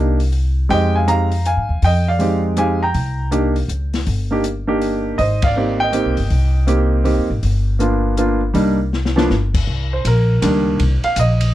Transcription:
0.00 0.66 C2 medium
0.00 0.17 A#3 medium
0.00 0.17 D4 soft
0.00 0.17 D#4 medium
0.00 0.18 G4 medium
0.20 open hi-hat soft
0.33 open hi-hat soft
0.69 1.54 F2 medium
0.69 1.04 G#3 medium
0.69 1.05 C4 medium
0.69 1.06 D#4 medium
0.69 1.06 G4 medium
0.69 0.94 D#5 medium
0.69 0.93 G5 medium
0.69 kick soft
0.69 open hi-hat soft
0.95 1.08 F5 medium
0.95 1.07 G#5 medium
1.06 1.29 G#3 soft
1.06 1.29 C4 soft
1.06 1.29 D#4 soft
1.06 1.29 G4 medium
1.06 1.43 F5 medium
1.06 1.46 A#5 medium
1.06 closed hi-hat soft
1.32 open hi-hat soft
1.45 1.81 F5 medium
1.45 1.84 G#5 medium
1.45 closed hi-hat soft
1.57 1.68 G#2 medium
1.69 1.81 D#2 medium
1.82 2.90 F2 medium
1.82 2.07 D#5 medium
1.82 2.08 G5 medium
1.82 kick soft
1.82 open hi-hat soft
2.08 2.43 D5 medium
2.08 2.42 F5 medium
2.19 2.55 G#3 medium
2.19 2.55 C4 soft
2.19 2.56 D#4 soft
2.19 2.56 G4 medium
2.19 open hi-hat soft
2.57 2.79 G#3 medium
2.57 2.79 C4 medium
2.57 2.79 D#4 medium
2.57 2.79 G4 medium
2.57 2.81 F5 medium
2.57 2.83 G#5 medium
2.57 closed hi-hat soft
2.83 3.30 G5 medium
2.83 3.29 A#5 medium
2.94 3.65 C2 medium
2.94 kick soft
2.94 open hi-hat soft
3.31 3.53 A#3 medium
3.31 3.53 D4 medium
3.31 3.54 D#4 medium
3.31 3.54 G4 medium
3.31 closed hi-hat soft
3.56 open hi-hat soft
3.68 4.04 C#2 medium
3.68 closed hi-hat soft
3.94 snare soft
3.94 open hi-hat soft
4.07 5.15 G1 medium
4.07 kick soft
4.07 open hi-hat soft
4.31 4.43 A#3 medium
4.31 4.43 D4 soft
4.31 4.43 D#4 soft
4.31 4.43 G4 medium
4.44 closed hi-hat soft
4.67 5.16 A#3 medium
4.67 5.16 D4 medium
4.67 5.16 D#4 medium
4.67 5.16 G4 medium
4.82 open hi-hat soft
5.18 6.02 G#1 medium
5.18 5.42 C5 medium
5.18 5.43 D#5 medium
5.18 kick soft
5.18 open hi-hat soft
5.42 5.78 F5 medium
5.42 kick medium
5.42 ride medium
5.46 5.79 D5 medium
5.56 5.91 A#3 medium
5.56 5.92 C4 medium
5.56 5.92 D#4 medium
5.56 5.92 G4 medium
5.80 7.40 D#5 medium
5.80 9.26 G5 medium
5.92 6.15 A#3 medium
5.92 6.15 C4 medium
5.92 6.15 D#4 medium
5.92 6.15 G4 medium
5.92 closed hi-hat soft
6.05 6.17 C2 medium
6.17 6.30 G1 medium
6.17 open hi-hat soft
6.30 7.14 C2 medium
6.30 kick soft
6.30 open hi-hat soft
6.67 7.03 A#3 medium
6.67 7.03 C4 medium
6.67 7.03 D#4 medium
6.67 7.04 G4 medium
6.67 closed hi-hat soft
7.04 7.27 A#3 medium
7.04 7.27 C4 medium
7.04 7.27 D#4 medium
7.04 7.27 G4 medium
7.04 open hi-hat soft
7.18 7.29 D#2 medium
7.30 7.42 G#1 medium
7.43 8.51 G1 medium
7.43 kick soft
7.43 open hi-hat soft
7.79 8.16 A#3 medium
7.79 8.16 B3 medium
7.79 8.16 D4 medium
7.79 8.16 F4 medium
7.79 closed hi-hat soft
8.17 8.39 A#3 medium
8.17 8.40 B3 medium
8.17 8.40 D4 medium
8.17 8.40 F4 medium
8.17 closed hi-hat soft
8.54 9.26 C2 medium
8.54 8.76 G3 medium
8.54 8.76 A#3 medium
8.54 8.77 D4 medium
8.54 8.77 D#4 medium
8.54 kick soft
8.54 open hi-hat soft
8.93 snare soft
9.05 snare soft
9.16 9.28 F3 medium
9.16 9.29 A#3 medium
9.16 9.29 B3 medium
9.16 9.29 D4 medium
9.16 snare medium
9.30 9.65 G1 medium
9.30 snare soft
9.54 kick medium
9.54 crash medium
9.67 10.04 C2 medium
9.67 kick soft
9.93 10.05 C5 medium
10.05 10.41 A#1 medium
10.05 10.41 A#4 medium
10.05 kick soft
10.05 hi-hat pedal soft
10.05 ride medium
10.42 10.79 C#2 medium
10.42 10.79 D#3 medium
10.42 10.80 G3 medium
10.42 10.80 A#3 medium
10.42 10.80 D4 medium
10.42 kick soft
10.42 hi-hat pedal medium
10.42 ride medium
10.79 11.02 C2 medium
10.79 kick soft
10.79 ride medium
11.04 11.17 F5 medium
11.04 muted upright bass stroke soft
11.04 ride soft
11.16 11.53 A#1 medium
11.16 11.53 D#5 medium
11.16 kick soft
11.16 hi-hat pedal medium
11.16 ride medium
11.41 ride medium

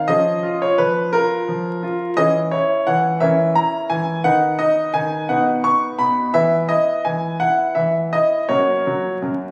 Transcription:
0.08 0.42 F3 medium
0.08 2.12 C#4 medium
0.08 2.12 G#4 soft
0.08 0.60 D#5 loud
0.43 0.77 F4 medium
0.62 0.79 C#5 medium
0.78 1.12 F3 medium
0.78 1.09 B4 loud
1.13 1.46 F4 medium
1.13 2.16 A#4 loud
1.48 1.81 F3 medium
1.83 2.16 F4 medium
2.17 2.50 E3 medium
2.17 3.16 C#4 medium
2.17 3.16 G#4 medium
2.17 2.37 D#5 loud
2.51 2.85 E4 medium
2.51 2.86 C#5 medium
2.87 3.20 E3 medium
2.87 3.17 F#5 loud
3.20 3.54 E3 medium
3.20 4.21 C#4 medium
3.20 4.21 A#4 medium
3.20 3.51 E5 loud
3.55 3.89 E4 medium
3.55 3.90 A#5 loud
3.90 4.24 E3 medium
3.90 4.21 G#5 loud
4.24 4.58 D#3 medium
4.24 4.58 D#4 medium
4.24 5.25 B4 medium
4.24 4.59 F#5 loud
4.59 4.93 D#4 medium
4.59 4.91 D#5 loud
4.94 5.28 D#3 medium
4.94 5.29 G#5 loud
5.29 5.63 B2 medium
5.29 6.31 D#4 medium
5.29 6.31 B4 medium
5.29 5.64 F#5 medium
5.64 5.98 B3 medium
5.64 5.99 C#6 loud
5.99 6.33 B2 medium
5.99 6.34 B5 medium
6.34 6.68 E3 medium
6.34 8.45 B3 soft
6.34 8.45 B4 medium
6.34 6.55 E5 loud
6.69 7.04 E4 medium
6.69 7.05 D#5 loud
7.05 7.40 E3 medium
7.05 7.41 G#5 loud
7.40 7.75 E4 medium
7.40 7.76 F#5 loud
7.75 8.11 E3 medium
7.75 7.97 E5 medium
8.13 8.48 E4 medium
8.13 8.49 D#5 loud
8.49 8.85 F#2 medium
8.49 9.51 A#3 soft
8.49 9.51 F#4 soft
8.49 9.15 C#5 medium
8.87 9.22 F#3 medium
9.22 9.51 F#2 medium

